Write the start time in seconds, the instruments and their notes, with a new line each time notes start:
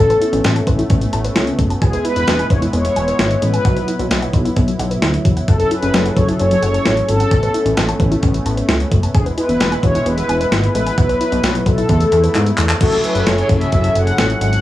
Already playing: analog synth pad C#4, analog polysynth A4
0.00 analog synth bass A1, analog synth pad A3 B3
0.10 synth arpeggio sound B4, closed hi-hat
0.22 synth arpeggio sound E4, closed hi-hat
0.33 analog synth bass A1, synth arpeggio sound C#4, closed hi-hat
0.44 analog synth bass A1, synth arpeggio sound A3, snare, closed hi-hat
0.56 synth arpeggio sound A5, closed hi-hat
0.67 analog synth bass A1, synth arpeggio sound B4, kick, closed hi-hat
0.79 synth arpeggio sound E4, closed hi-hat
0.90 analog synth bass A1, synth arpeggio sound C#4, kick, closed hi-hat
1.01 synth arpeggio sound A3, closed hi-hat
1.13 analog synth bass A1, synth arpeggio sound A5, closed hi-hat
1.24 synth arpeggio sound B4, closed hi-hat
1.36 analog synth bass C#2, synth arpeggio sound E4, snare, closed hi-hat
1.47 closed hi-hat
1.59 analog synth bass F#1, synth arpeggio sound A3, kick, closed hi-hat
1.70 synth arpeggio sound A5, closed hi-hat
1.82 analog synth bass E1, analog synth pad G#3 E4, analog polysynth G#4, synth arpeggio sound G#5, kick, closed hi-hat
1.93 synth arpeggio sound B4, closed hi-hat
2.05 synth arpeggio sound E4, analog polysynth B4, closed hi-hat
2.16 analog synth bass E1, synth arpeggio sound B3, closed hi-hat
2.27 analog synth bass E1, synth arpeggio sound G#3, snare, closed hi-hat
2.39 synth arpeggio sound G#5, closed hi-hat
2.50 analog synth bass E1, synth arpeggio sound B4, analog polysynth C#5, kick, closed hi-hat
2.62 synth arpeggio sound E4, closed hi-hat
2.73 analog synth bass E1, synth arpeggio sound B3, analog polysynth C#5, closed hi-hat
2.85 synth arpeggio sound G#3, closed hi-hat
2.96 analog synth bass E1, synth arpeggio sound G#5, closed hi-hat
3.08 synth arpeggio sound B4, closed hi-hat
3.19 analog synth bass G#1, synth arpeggio sound E4, snare, closed hi-hat
3.31 closed hi-hat
3.42 analog synth bass A1, synth arpeggio sound G#3, analog polysynth B4, closed hi-hat
3.53 synth arpeggio sound G#5, closed hi-hat
3.65 analog synth bass B1, analog synth pad F#3, synth arpeggio sound F#5, kick, closed hi-hat
3.76 synth arpeggio sound B4, closed hi-hat
3.88 synth arpeggio sound E4, closed hi-hat
3.99 analog synth bass B1, synth arpeggio sound B3, closed hi-hat
4.11 analog synth bass B1, synth arpeggio sound F#3, snare, closed hi-hat
4.22 synth arpeggio sound F#5, closed hi-hat
4.33 analog synth bass B1, synth arpeggio sound B4, kick, closed hi-hat
4.45 synth arpeggio sound E4, closed hi-hat
4.56 analog synth bass B1, synth arpeggio sound B3, kick, closed hi-hat
4.68 synth arpeggio sound F#3, closed hi-hat
4.79 analog synth bass B1, synth arpeggio sound F#5, closed hi-hat
4.91 synth arpeggio sound B4, closed hi-hat
5.02 analog synth bass D2, synth arpeggio sound E4, snare, closed hi-hat
5.14 closed hi-hat
5.25 analog synth bass E1, synth arpeggio sound F#3, kick, closed hi-hat
5.37 synth arpeggio sound F#5, closed hi-hat
5.48 analog synth bass F#1, analog synth pad C#4 G#4 A4, analog polysynth A4, synth arpeggio sound F#5, kick, closed hi-hat
5.60 synth arpeggio sound A4, closed hi-hat
5.71 synth arpeggio sound E4, analog polysynth B4, closed hi-hat
5.82 analog synth bass F#1, synth arpeggio sound C#4, closed hi-hat
5.94 analog synth bass F#1, synth arpeggio sound F#3, snare, closed hi-hat
6.05 synth arpeggio sound F#5, closed hi-hat
6.17 analog synth bass F#1, synth arpeggio sound A4, analog polysynth C#5, kick, closed hi-hat
6.28 synth arpeggio sound E4, closed hi-hat
6.39 analog synth bass F#1, synth arpeggio sound C#4, analog polysynth C#5, closed hi-hat
6.51 synth arpeggio sound F#3, closed hi-hat
6.62 analog synth bass F#1, synth arpeggio sound F#5, closed hi-hat
6.74 synth arpeggio sound A4, closed hi-hat
6.85 analog synth bass A1, synth arpeggio sound E4, snare, closed hi-hat
6.97 closed hi-hat
7.08 analog synth bass G#1, synth arpeggio sound F#3, analog polysynth A4, closed hi-hat
7.20 synth arpeggio sound F#5, closed hi-hat
7.31 analog synth bass A1, analog synth pad A3 B3, synth arpeggio sound A5, kick, closed hi-hat
7.43 synth arpeggio sound B4, closed hi-hat
7.54 synth arpeggio sound E4, closed hi-hat
7.66 analog synth bass A1, synth arpeggio sound C#4, closed hi-hat
7.77 analog synth bass A1, synth arpeggio sound A3, snare, closed hi-hat
7.88 synth arpeggio sound A5, closed hi-hat
8.00 analog synth bass A1, synth arpeggio sound B4, kick, closed hi-hat
8.11 synth arpeggio sound E4, closed hi-hat
8.23 analog synth bass A1, synth arpeggio sound C#4, kick, closed hi-hat
8.34 synth arpeggio sound A3, closed hi-hat
8.46 analog synth bass A1, synth arpeggio sound A5, closed hi-hat
8.57 synth arpeggio sound B4, closed hi-hat
8.69 analog synth bass C#2, synth arpeggio sound E4, snare, closed hi-hat
8.80 closed hi-hat
8.92 analog synth bass F#1, synth arpeggio sound A3, kick, closed hi-hat
9.03 synth arpeggio sound A5, closed hi-hat
9.14 analog synth bass E1, analog synth pad G#3 E4, analog polysynth G#4, synth arpeggio sound G#5, kick, closed hi-hat
9.26 synth arpeggio sound B4, closed hi-hat
9.37 synth arpeggio sound E4, analog polysynth B4, closed hi-hat
9.49 analog synth bass E1, synth arpeggio sound B3, closed hi-hat
9.60 analog synth bass E1, synth arpeggio sound G#3, snare, closed hi-hat
9.72 synth arpeggio sound G#5, closed hi-hat
9.83 analog synth bass E1, synth arpeggio sound B4, analog polysynth C#5, kick, closed hi-hat
9.95 synth arpeggio sound E4, closed hi-hat
10.06 analog synth bass E1, synth arpeggio sound B3, analog polysynth B4, closed hi-hat
10.18 synth arpeggio sound G#3, closed hi-hat
10.29 analog synth bass E1, synth arpeggio sound G#5, closed hi-hat
10.40 synth arpeggio sound B4, closed hi-hat
10.52 analog synth bass G#1, synth arpeggio sound E4, snare, closed hi-hat
10.64 closed hi-hat
10.75 analog synth bass A1, synth arpeggio sound G#3, analog polysynth B4, closed hi-hat
10.86 synth arpeggio sound G#5, closed hi-hat
10.98 analog synth bass B1, analog synth pad F#3, analog polysynth B4, synth arpeggio sound F#5, kick, closed hi-hat
11.09 synth arpeggio sound B4, closed hi-hat
11.21 synth arpeggio sound E4, closed hi-hat
11.32 analog synth bass B1, synth arpeggio sound B3, closed hi-hat
11.44 analog synth bass B1, synth arpeggio sound F#3, snare, closed hi-hat
11.55 synth arpeggio sound F#5, closed hi-hat
11.66 analog synth bass B1, analog polysynth A4, synth arpeggio sound B4, kick, closed hi-hat
11.78 synth arpeggio sound E4, closed hi-hat
11.89 analog synth bass E2, analog synth pad A3 E4, synth arpeggio sound B3, kick, closed hi-hat
12.01 synth arpeggio sound A3, closed hi-hat
12.12 analog synth bass E2, synth arpeggio sound A5, closed hi-hat
12.24 synth arpeggio sound B4, closed hi-hat
12.35 analog synth bass G#2, synth arpeggio sound E4, clap, closed hi-hat
12.46 closed hi-hat
12.58 analog synth bass E2, synth arpeggio sound A3, clap, closed hi-hat
12.69 synth arpeggio sound A5, clap, closed hi-hat
12.81 analog synth bass F#1, analog synth pad F#3 C#4 E4 G#4 A4, grand piano A3 E4 F#4, analog polysynth A4, kick, closed hi-hat, crash
12.92 closed hi-hat
13.04 analog polysynth B4, closed hi-hat
13.15 analog synth bass F#1, closed hi-hat
13.27 analog synth bass F#1, analog polysynth C#5, snare, closed hi-hat
13.38 closed hi-hat
13.49 analog synth bass F#1, analog polysynth E5, kick, closed hi-hat
13.61 closed hi-hat
13.72 analog synth bass F#1, analog polysynth E5, kick, closed hi-hat
13.84 closed hi-hat
13.95 analog synth bass F#1, analog polysynth F#5, closed hi-hat
14.07 closed hi-hat
14.18 analog synth bass A1, snare, closed hi-hat
14.30 closed hi-hat
14.41 analog synth bass G#1, analog polysynth F#5, closed hi-hat
14.53 closed hi-hat